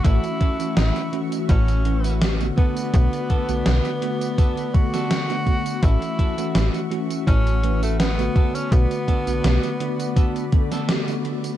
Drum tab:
HH |xxxxxxxxxxxxxxxx|xxxxxxxxxxxxxxxx|xxxxxxxxxxxxxxxx|xxxxxxxxxxxxxxxx|
TB |xx-xxx-xxx-xxx-x|xx-xxx-xxx-xxx-x|xx-xxx-xxx-xxx-x|xx-xxx-xxx-xxx-x|
SD |----o-------o---|----o------oo---|----o-------o---|----o------oo---|
BD |o-o-----o-----o-|o-o-----o-o---o-|o-o-----o-----o-|o-o-----o-o-----|